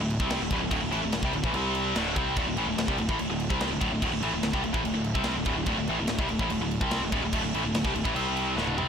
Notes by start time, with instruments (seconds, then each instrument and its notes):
0.00 picked electric bass D1, distorted electric guitar D2 A2
0.10 crash
0.20 picked electric bass C2, distorted electric guitar C3 G3 C4, kick
0.30 snare, crash
0.40 picked electric bass D1, distorted electric guitar D2 A2
0.51 picked electric bass D1, distorted electric guitar D2 A2, kick, crash
0.62 picked electric bass D1, distorted electric guitar D2 A2
0.70 picked electric bass D1, distorted electric guitar D2 A2, kick, crash
0.82 picked electric bass D1, distorted electric guitar D2 A2
0.91 picked electric bass A1, distorted electric guitar A2 E3, crash
1.02 picked electric bass D1, distorted electric guitar D2 A2
1.12 picked electric bass D1, distorted electric guitar D2 A2, snare, crash
1.23 picked electric bass C2, distorted electric guitar C3 G3, kick
1.33 picked electric bass D1, distorted electric guitar D2 A2, crash
1.43 picked electric bass A1, distorted electric guitar A2 E3, kick
1.54 picked electric bass C2, distorted electric guitar C3 G3 C4, crash
1.75 crash
1.95 picked electric bass D1, distorted electric guitar D2 A2 D3, snare, crash
2.16 picked electric bass C2, distorted electric guitar C3 G3 C4, kick, crash
2.37 picked electric bass D1, distorted electric guitar D2 A2, kick, crash
2.47 picked electric bass D1, distorted electric guitar D2 A2
2.57 picked electric bass A1, distorted electric guitar A2 E3, crash
2.66 picked electric bass D1, distorted electric guitar D2 A2
2.77 picked electric bass D1, distorted electric guitar D2 A2, snare, crash
2.88 picked electric bass C2, distorted electric guitar C3 G3, kick
2.98 picked electric bass D1, distorted electric guitar D2 A2, crash
3.09 picked electric bass A1, distorted electric guitar A2 E3, kick
3.19 picked electric bass D1, distorted electric guitar D2 A2, crash
3.29 picked electric bass D1, distorted electric guitar D2 A2
3.40 crash
3.49 picked electric bass C2, distorted electric guitar C3 G3 C4, kick
3.60 snare, crash
3.70 picked electric bass D1, distorted electric guitar D2 A2
3.80 picked electric bass D1, distorted electric guitar D2 A2, kick, crash
3.90 picked electric bass D1, distorted electric guitar D2 A2
4.02 picked electric bass D1, distorted electric guitar D2 A2, kick, crash
4.11 picked electric bass D1, distorted electric guitar D2 A2
4.21 picked electric bass A1, distorted electric guitar A2 E3, crash
4.31 picked electric bass D1, distorted electric guitar D2 A2
4.42 picked electric bass D1, distorted electric guitar D2 A2, snare, crash
4.54 picked electric bass C2, distorted electric guitar C3 G3, kick
4.63 picked electric bass D1, distorted electric guitar D2 A2, crash
4.73 picked electric bass A1, distorted electric guitar A2 E3, kick
4.83 picked electric bass D1, distorted electric guitar D2 A2, crash
4.94 picked electric bass D1, distorted electric guitar D2 A2
5.04 crash
5.15 picked electric bass C2, distorted electric guitar C3 G3 C4, kick
5.24 snare, crash
5.36 picked electric bass D1, distorted electric guitar D2 A2
5.45 picked electric bass D1, distorted electric guitar D2 A2, kick, crash
5.56 picked electric bass D1, distorted electric guitar D2 A2
5.66 picked electric bass D1, distorted electric guitar D2 A2, kick, crash
5.78 picked electric bass D1, distorted electric guitar D2 A2
5.88 picked electric bass A1, distorted electric guitar A2 E3, crash
5.98 picked electric bass D1, distorted electric guitar D2 A2
6.07 picked electric bass D1, distorted electric guitar D2 A2, snare, crash
6.18 picked electric bass C2, distorted electric guitar C3 G3, kick
6.29 picked electric bass D1, distorted electric guitar D2 A2, crash
6.39 picked electric bass A1, distorted electric guitar A2 E3, kick
6.49 picked electric bass D1, distorted electric guitar D2 A2, crash
6.59 picked electric bass D1, distorted electric guitar D2 A2
6.71 crash
6.80 picked electric bass C2, distorted electric guitar C3 G3 C4, kick
6.91 snare, crash
7.00 picked electric bass D1, distorted electric guitar D2 A2
7.12 picked electric bass D1, distorted electric guitar D2 A2, kick, crash
7.22 picked electric bass D1, distorted electric guitar D2 A2
7.32 picked electric bass D1, distorted electric guitar D2 A2, kick, crash
7.43 picked electric bass D1, distorted electric guitar D2 A2
7.54 picked electric bass A1, distorted electric guitar A2 E3, crash
7.64 picked electric bass D1, distorted electric guitar D2 A2
7.74 picked electric bass D1, distorted electric guitar D2 A2, snare, crash
7.84 picked electric bass C2, distorted electric guitar C3 G3, kick
7.94 picked electric bass D1, distorted electric guitar D2 A2, crash
8.05 picked electric bass A1, distorted electric guitar A2 E3, kick
8.15 picked electric bass C2, distorted electric guitar C3 G3 C4, crash
8.37 crash
8.56 picked electric bass D1, distorted electric guitar D2 A2 D3, snare
8.67 high tom
8.78 picked electric bass C2, distorted electric guitar C3 G3 C4, mid tom